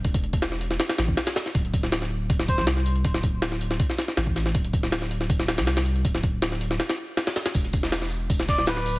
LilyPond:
<<
  \new Staff \with { instrumentName = "Melodica" } { \time 4/4 \key d \dorian \tempo 4 = 160 r1 | r2 r8 c''8 r4 | r1 | r1 |
r1 | r2 r8 d''8 b'8. r16 | }
  \new Staff \with { instrumentName = "Sub bass" } { \clef bass \time 4/4 \key d \dorian e,,2 r8 a,,8 r4 | d,,2 d,,8. c,4~ c,16 | d,,2 r4 a,,4 | d,,2 d,,8. c,4~ c,16 |
d,,2 r2 | e,,2 e,,8. d,,4~ d,,16 | }
  \new DrumStaff \with { instrumentName = "Drums" } \drummode { \time 4/4 <hho bd>16 <hho bd>16 hh16 <hho bd>16 <hho sn>16 sn16 hho16 sn16 <hho sn>16 <hho sn>16 <hho sn>16 bd16 <hho sn>16 <hho sn>16 <hho sn>16 <hho sn>16 | <hho bd>16 hh16 <hho bd>16 sn16 <hho sn>16 sn8. <hho bd>16 sn16 <hho bd>16 sn16 <hho sn>16 sn16 hho16 hh16 | <hho bd>16 sn16 <hho bd>8 <hho sn>16 sn16 hho16 sn16 <hho bd>16 sn16 <hho sn>16 sn16 <hho sn>16 bd16 <hho sn>16 sn16 | <hho bd>16 hh16 <hho bd>16 sn16 <hho sn>16 sn16 hho16 sn16 <hho bd>16 sn16 <hho sn>16 <hho sn>16 <hho sn>16 <hho sn>16 hho16 hh16 |
<hho bd>16 sn16 <hho bd>8 <hho sn>16 sn16 hho16 sn16 <hho sn>16 <hho sn>8. <hho sn>16 <hho sn>16 <hho sn>16 <hho sn>16 | <hho bd tamb>16 hh16 <hho bd tamb>16 sn16 <hho sn tamb>16 sn16 tamb8 <hho bd tamb>16 sn16 <hho bd sn>16 sn16 <hho sn tamb>16 sn16 <hho tamb>16 hh16 | }
>>